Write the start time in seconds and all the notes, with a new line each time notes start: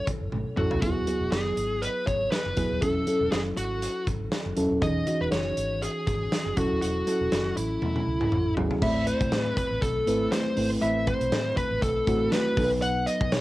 Already playing: F#3 C#4 E4 A4
0.07 muted fingered electric bass stroke, kick, closed hi-hat
0.21 F#1
0.32 G#1, high tom
0.57 A1 F#3 C#4 E4 F#4 A4, mid tom
0.71 B1, floor tom
0.82 E1 F#3 B3 E4 F#4 G#4, kick, closed hi-hat
1.07 F#3 B3 E4 G#4, closed hi-hat
1.21 E1
1.32 F#1 G#4, snare, closed hi-hat
1.57 G#1, closed hi-hat
1.82 B4, closed hi-hat
2.07 G#1 C#5, kick, closed hi-hat
2.31 B4, snare, closed hi-hat
2.46 F#1
2.56 E1 F#3 B3 E4 G#4, kick, closed hi-hat
2.71 D#1
2.81 E1 F#3 C#4 E4 A4, kick, closed hi-hat
3.07 F#3 C#4 E4 A4, closed hi-hat
3.20 E1
3.32 F#1 G#4, snare, closed hi-hat
3.57 G#1 F#4, closed hi-hat
3.82 closed hi-hat
4.07 G#1, kick, closed hi-hat
4.32 snare, closed hi-hat
4.46 F#1
4.56 E1 F#3 C#4 E4 A4, closed hi-hat
4.71 D#1
4.81 E1 E3 C#4 D#4 G#4 D#5, kick, closed hi-hat
5.07 E3 C#4 D#4 F#4 D#5, closed hi-hat
5.21 E1 B4
5.32 F#1 C#5, snare, closed hi-hat
5.57 G#1, closed hi-hat
5.82 G#4, closed hi-hat
6.07 G#1 G#4, kick, closed hi-hat
6.32 snare, closed hi-hat
6.46 F#1
6.56 E1 F#3 C#4 E4 F#4 A4, kick, closed hi-hat
6.71 D#1
6.82 E1 F#4, closed hi-hat
7.07 F#3 C#4 E4 A4, closed hi-hat
7.21 E1
7.32 F#1, snare, closed hi-hat
7.57 A1 E4, closed hi-hat
7.82 E2, high tom
7.96 high tom
8.07 C#2
8.21 mid tom
8.32 A1, mid tom
8.56 G#1 F#3 C#4 E4 G#4, floor tom
8.71 floor tom
8.82 A1 A3 C4 E4 E5 B5, kick, crash
9.07 C5, closed hi-hat
9.21 B1, kick, closed hi-hat
9.32 A2, snare, closed hi-hat
9.42 B4
9.57 B4, kick, closed hi-hat
9.71 A1
9.82 B1 A4, kick, closed hi-hat
10.07 G#1 A3 C4 E4 B4, closed hi-hat
10.32 C5, snare, closed hi-hat
10.56 G#1 A3 C4 E4 B4, open hi-hat
10.81 A1 A3 C4 E4 E5 B5, closed hi-hat
11.07 C5, kick, closed hi-hat
11.21 B1, closed hi-hat
11.32 A2, snare, closed hi-hat
11.57 B4, kick, closed hi-hat
11.71 A1
11.82 B1 A4, kick, closed hi-hat
12.07 A1 A3 C4 E4 F#4, kick, closed hi-hat
12.32 B4, snare, closed hi-hat
12.57 B1 F#3 B3 D#4 A4, kick, open hi-hat
12.64 B4
12.82 F#5, closed hi-hat
13.07 D#5, closed hi-hat
13.21 B1, kick
13.32 B2 C#5, snare, closed hi-hat